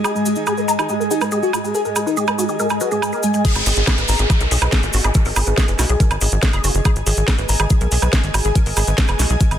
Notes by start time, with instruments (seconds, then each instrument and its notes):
Already playing: analog synth pad G#4 D#5 G#5
0.04 synth arpeggio sound G#4, analog synth lead G#4, cabasa, high woodblock
0.15 analog synth lead G#3, cabasa
0.26 analog synth lead G#3, synth arpeggio sound G#4, cabasa
0.36 analog synth lead D#4, cabasa
0.46 analog synth lead G#3, synth arpeggio sound G#4, cabasa, high woodblock
0.57 analog synth lead G#3, synth arpeggio sound B4, cabasa
0.68 analog synth lead G#3, synth arpeggio sound A#5, cabasa
0.79 analog synth lead D#4, synth arpeggio sound G#4, cabasa, high woodblock
0.89 analog synth lead G#3, synth arpeggio sound G#4, cabasa
1.00 analog synth lead G#3, synth arpeggio sound A#4, cabasa
1.11 analog synth lead D#4, synth arpeggio sound G#4, cabasa
1.21 analog synth lead G#3, synth arpeggio sound B4, cabasa, high woodblock
1.31 analog synth lead G#3, synth arpeggio sound G#4, cabasa
1.43 analog synth lead F#4, cabasa
1.53 analog synth lead G#3, synth arpeggio sound F#4, cabasa, high woodblock
1.64 analog synth lead G#3, synth arpeggio sound G#4, cabasa
1.75 analog synth lead G#4, synth arpeggio sound A#4, cabasa
1.85 analog synth lead G#3, synth arpeggio sound A#4, cabasa
1.96 analog synth lead G#3, synth arpeggio sound G#4, cabasa, high woodblock
2.06 analog synth lead D#4, synth arpeggio sound B4, cabasa
2.17 analog synth lead G#3, synth arpeggio sound G#4, cabasa
2.27 analog synth lead G#3, synth arpeggio sound B4, cabasa, high woodblock
2.38 analog synth lead G#3, synth arpeggio sound F#4, cabasa
2.49 analog synth lead D#4, synth arpeggio sound G#4, cabasa
2.59 analog synth lead G#3, synth arpeggio sound A#4, cabasa
2.70 analog synth lead G#3, cabasa, high woodblock
2.80 analog synth lead F#4, synth arpeggio sound B4, cabasa
2.91 analog synth lead G#3, synth arpeggio sound G#4, cabasa
3.02 analog synth lead G#3, synth arpeggio sound G#5, cabasa, high woodblock
3.12 synth arpeggio sound G#4, analog synth lead A#4, cabasa
3.23 analog synth lead G#3, synth arpeggio sound G#5, cabasa
3.34 analog synth lead G#3, synth arpeggio sound G#5, cabasa
3.45 synth arpeggio sound G#4, analog synth pad G#4, kick, closed hi-hat, crash, downlifter, cabasa
3.55 analog synth bass G#1, closed hi-hat, cabasa, high woodblock
3.66 analog synth bass G#1, synth arpeggio sound G#4, open hi-hat, cabasa
3.76 analog synth bass G#1, analog synth pad D#5, closed hi-hat, cabasa
3.87 synth arpeggio sound G#4, kick, snare, closed hi-hat, cabasa, high woodblock
3.98 analog synth bass G#1, synth arpeggio sound B4, closed hi-hat, cabasa
4.08 analog synth bass G#1, synth arpeggio sound A#5, open hi-hat, cabasa
4.19 analog synth bass G#1, synth arpeggio sound G#4, analog synth pad G#5, closed hi-hat, cabasa
4.30 synth arpeggio sound G#4, kick, closed hi-hat, cabasa, high woodblock
4.40 analog synth bass B1, synth arpeggio sound A#4, closed hi-hat, cabasa
4.51 analog synth bass B1, synth arpeggio sound G#4, open hi-hat, cabasa
4.62 analog synth bass B1, synth arpeggio sound B4, closed hi-hat, cabasa, high woodblock
4.72 synth arpeggio sound G#4, kick, snare, closed hi-hat, cabasa
4.83 analog synth bass G#1, closed hi-hat, cabasa
4.93 analog synth bass G#1, synth arpeggio sound F#4, open hi-hat, cabasa
5.04 analog synth bass G#1, synth arpeggio sound G#4, closed hi-hat, cabasa, high woodblock
5.14 synth arpeggio sound A#4, kick, closed hi-hat, cabasa
5.25 analog synth bass G#1, synth arpeggio sound A#4, open hi-hat, cabasa
5.36 analog synth bass G#1, synth arpeggio sound G#4, open hi-hat, cabasa, high woodblock
5.47 analog synth bass G#1, synth arpeggio sound B4, closed hi-hat, cabasa
5.58 synth arpeggio sound G#4, kick, snare, closed hi-hat, cabasa
5.68 analog synth bass F#1, synth arpeggio sound B4, closed hi-hat, cabasa
5.79 analog synth bass B1, synth arpeggio sound F#4, snare, open hi-hat, cabasa, high woodblock
5.89 analog synth bass B1, synth arpeggio sound G#4, closed hi-hat, cabasa
6.00 synth arpeggio sound A#4, kick, closed hi-hat, cabasa
6.11 analog synth bass G#1, closed hi-hat, cabasa, high woodblock
6.21 analog synth bass G#1, synth arpeggio sound G#4, open hi-hat, cabasa
6.32 analog synth bass G#1, closed hi-hat, cabasa
6.43 synth arpeggio sound G#4, kick, snare, closed hi-hat, cabasa
6.53 analog synth bass F#1, synth arpeggio sound G#4, closed hi-hat, cabasa, high woodblock
6.64 analog synth bass F#1, synth arpeggio sound F#4, open hi-hat, cabasa
6.75 analog synth bass F#1, closed hi-hat, cabasa
6.85 synth arpeggio sound G#4, kick, closed hi-hat, cabasa, high woodblock
6.96 analog synth bass G#1, closed hi-hat, cabasa
7.07 analog synth bass G#1, synth arpeggio sound G#4, open hi-hat, cabasa
7.17 analog synth bass G#1, closed hi-hat, cabasa
7.28 synth arpeggio sound G#4, kick, snare, closed hi-hat, cabasa, high woodblock
7.38 analog synth bass G#1, synth arpeggio sound B4, closed hi-hat, cabasa
7.49 analog synth bass G#1, synth arpeggio sound A#5, open hi-hat, cabasa
7.59 analog synth bass G#1, synth arpeggio sound G#4, cabasa, high woodblock
7.70 synth arpeggio sound G#4, kick, closed hi-hat, cabasa
7.81 analog synth bass B1, synth arpeggio sound A#4, closed hi-hat, cabasa
7.91 analog synth bass B1, synth arpeggio sound G#4, open hi-hat, cabasa
8.02 analog synth bass B1, synth arpeggio sound B4, closed hi-hat, cabasa, high woodblock
8.13 synth arpeggio sound G#4, kick, snare, closed hi-hat, cabasa
8.24 analog synth bass G#1, closed hi-hat, cabasa
8.34 analog synth bass G#1, synth arpeggio sound F#4, open hi-hat, cabasa, high woodblock
8.44 analog synth bass G#1, synth arpeggio sound G#4, closed hi-hat, cabasa
8.55 synth arpeggio sound A#4, kick, closed hi-hat, cabasa
8.66 analog synth bass G#1, synth arpeggio sound A#4, open hi-hat, cabasa
8.76 analog synth bass G#1, synth arpeggio sound G#4, open hi-hat, cabasa, high woodblock
8.87 analog synth bass G#1, synth arpeggio sound B4, closed hi-hat, cabasa
8.98 synth arpeggio sound G#4, kick, snare, closed hi-hat, cabasa
9.08 analog synth bass F#1, synth arpeggio sound B4, closed hi-hat, cabasa, high woodblock
9.19 analog synth bass B1, synth arpeggio sound F#4, snare, open hi-hat, cabasa
9.30 analog synth bass B1, synth arpeggio sound G#4, closed hi-hat, cabasa
9.40 synth arpeggio sound A#4, kick, closed hi-hat, cabasa
9.51 analog synth bass G#1, closed hi-hat, cabasa, high woodblock